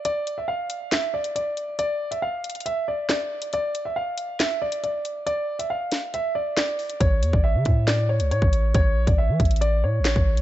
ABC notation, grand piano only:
X:1
M:4/4
L:1/16
Q:1/4=138
K:Aphr
V:1 name="Grand piano"
d3 e f4 e2 d2 d4 | d3 e f4 e2 d2 d4 | d3 e f4 e2 d2 d4 | d3 e f4 e2 d2 d4 |
^c3 d e4 d2 c2 c4 | ^c3 d e4 d2 c2 c4 |]